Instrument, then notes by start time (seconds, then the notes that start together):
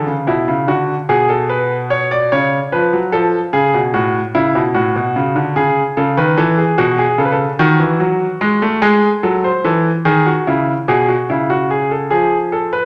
grand piano
Already playing: A4
0.07 C#3
0.27 B2 E4
0.48 C#3
0.68 D3 F#4
1.09 B2 G#4
1.29 A4
1.49 B4
1.90 C#5
2.11 D5
2.32 C#3 C#5
2.72 F3 B4
2.93 F#3
3.12 F3 A4
3.53 C#3 G#4
3.74 B2
3.94 A2 F#4
4.35 C#3 E4
4.55 B2
4.74 A2 F#4
4.96 B2
5.16 C#3
5.36 D3
5.56 C#3 G#4
5.97 C#3 A4
6.17 D#3 B4
6.37 E3 A4
6.58 G#4
6.78 B2 F#4
6.98 G#4
7.18 C#3 A4
7.25 B4
7.32 A4
7.59 D#3 F#4
7.80 E3
8.00 F#3
8.41 G#3
8.62 A3
8.82 G#3 G#4
9.23 F#3 A4
9.44 C5
9.64 E3 A4
10.05 D#3 G#4
10.26 F#4
10.47 C#3 E4
10.88 B2 G#4
11.08 F#4
11.30 C#3 E4
11.50 F#4
11.71 G#4
11.91 A4
12.10 F3 G#4
12.52 A4
12.73 B4